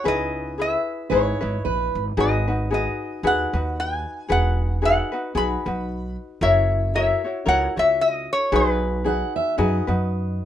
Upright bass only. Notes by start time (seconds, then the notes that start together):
0.06 C#2
1.12 G#1
1.42 G#1
1.65 A#1
1.95 G#1
2.17 G#1
3.23 D#2
3.53 D#2
4.30 E1
5.35 B1
5.66 B1
6.41 F#1
7.46 C#2
7.77 C#2
8.52 B1
9.58 F#2
9.88 F#2